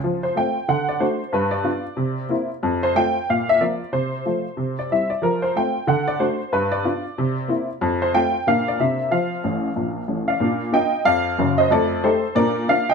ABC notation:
X:1
M:4/4
L:1/8
Q:"Swing" 1/4=185
K:F
V:1 name="Honky-tonk piano"
z c g2 ^f d c2 | =B d6 z | z c g2 f e d2 | c4- c d e d |
B c g2 ^f d c2 | =B d6 z | z c g2 f d e2 | f6- f [df]- |
[K:Bb] [df]2 [eg]2 [df]3 [ce] | [Ad]2 [Ac]2 [Bd]2 [df] [eg] |]
V:2 name="Honky-tonk piano"
F,2 [A,CF]2 D,2 [A,D^F]2 | G,,2 [=B,DF]2 C,2 [_B,CE]2 | F,,2 [A,CF]2 B,,2 [F,B,F]2 | C,2 [F,A,F]2 C,2 [G,CE]2 |
F,2 [A,CF]2 D,2 [A,D^F]2 | G,,2 [=B,DF]2 C,2 [_B,CE]2 | F,,2 [A,CF]2 [B,,B,DF]2 [C,B,CD]2 | F,2 [A,,,A,,]2 [B,,,B,,]2 [A,,,A,,]2 |
[K:Bb] [B,,D]2 [B,DF]2 F,,2 [_G,,,_G,,]2 | [F,,A,]2 [A,EG]2 [B,,D]2 [B,DF]2 |]